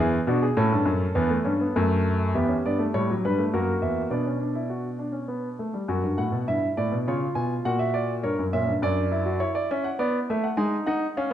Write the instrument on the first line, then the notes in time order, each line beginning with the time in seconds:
grand piano
Already playing: E2
0.00 E4 G#4
0.27 B2 D4 F#4
0.43 G#4
0.57 A2 C#4 A4
0.72 G2
0.85 F#2
1.15 E2 B3
1.30 A3
1.44 G2 C#4
1.61 B3
1.76 F#2 A3
2.35 E2 B3 G4 E5
2.48 C#4
2.65 G2 B3 D5
2.79 A3
2.94 A2 G3 C#5
3.10 F#3
3.25 G2 G3 B4
3.38 A3
3.53 F#2 A#3 F#4 A#4
3.82 E2 E5
4.10 B2 B3 D4 D5
4.26 C#4
4.40 D4
4.55 E4
4.70 F#4
4.99 D4
5.12 C#4
5.28 B3
5.59 A3
5.74 G3
5.88 F#2 F#4
6.03 G2
6.18 A2 F#5
6.32 B2
6.48 G2 E4 E5
6.77 A2 D5
6.92 B2
7.07 C#3 F4 C#5
7.35 B2 G#5
7.65 A#2 F#4 F#5
7.79 E5
7.94 D5
8.23 G2 A#4 C#5
8.39 F#2
8.53 A#2 C#4 E5
8.67 G2
8.82 F#2 D4 D5
9.12 E4
9.26 F#4
9.40 E4 C#5
9.55 D5
9.71 C#4 E5
9.84 F#5
9.99 B3 D5
10.30 A3 E5
10.44 F#5
10.57 G#3 D#4 G#5
10.86 D#4 F#5
11.17 C#4 F5